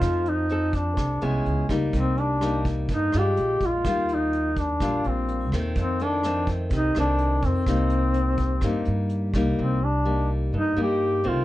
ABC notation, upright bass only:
X:1
M:4/4
L:1/8
Q:1/4=126
K:Cm
V:1 name="Upright bass" clef=bass
F,,4 C,, C,, _D,, D,, | C,,4 G,, G,, B,,, B,,, | E,,4 B,,, B,,,2 E,, | F,,4 C,, C,,2 F,, |
C,,4 G,, G,,2 C,, | C,,4 G,, G,,2 C,, |]